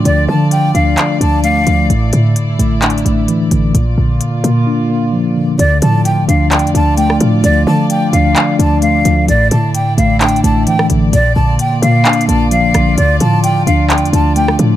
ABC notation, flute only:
X:1
M:4/4
L:1/8
Q:1/4=130
K:Dm
V:1 name="Flute"
d a g f2 a f2 | z8 | z8 | d a g f g a g z |
d a g f2 a f2 | d a g f g a g z | d a g f2 a f2 | d a g f g a g z |]